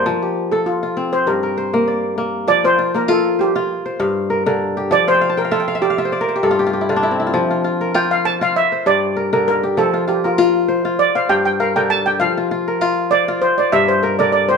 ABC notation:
X:1
M:4/4
L:1/16
Q:"Swing 16ths" 1/4=99
K:F
V:1 name="Steel pan"
c3 A F3 c B6 z2 | d c2 B A2 G4 z6 | d c2 B A2 G4 z6 | z4 g f a f e2 d4 B2 |
A2 G F2 z3 d f g g f g a g | f6 d2 c d e c B d d c |]
V:2 name="Kora"
A G3 z F2 c2 B c2 d3 z | z F F B, F2 c3 c f2 B B2 G- | G f/2 g/2 f/2 a/2 g/2 f/2 e/2 g/2 f/2 e/2 d/2 f/2 e/2 c/2 d/2 B/2 c/2 G/2 A/2 F/2 G/2 F/2 G/2 E/2 F/2 D/2 E/2 C/2 E/2 F/2- | F/2 z/2 F F B F2 c3 c3 B B2 G- |
G F F B F2 c3 c f2 B B2 G- | G F F B F2 c3 c f2 B B2 G |]
V:3 name="Kora" clef=bass
F,2 z A2 z C2 G,,2 z B,2 z B,2 | F,2 z2 F2 z F z2 G,,2 z D,2 z | F,2 z2 F2 z F z2 G,,2 z D,2 z | F,2 z2 F2 z F z2 G,,2 z D,2 z |
F,2 z2 F2 z F z2 G,,2 z D,2 z | F,2 z2 F2 z F z2 G,,2 z D,2 z |]